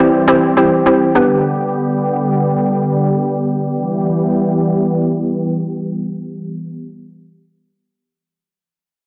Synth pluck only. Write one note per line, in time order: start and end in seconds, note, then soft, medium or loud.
0.00 0.22 C4 medium
0.00 0.22 E4 medium
0.00 0.22 G4 medium
0.00 0.22 C5 loud
0.28 0.51 C4 loud
0.28 0.51 E4 loud
0.28 0.51 G4 loud
0.28 0.51 C5 loud
0.57 0.80 C4 medium
0.57 0.80 E4 medium
0.57 0.80 G4 medium
0.57 0.80 C5 loud
0.86 1.09 C4 medium
0.86 1.09 E4 medium
0.86 1.09 G4 medium
0.86 1.09 C5 loud
1.15 1.38 B3 medium
1.15 1.38 D4 medium
1.15 1.38 G4 medium
1.15 1.39 B4 loud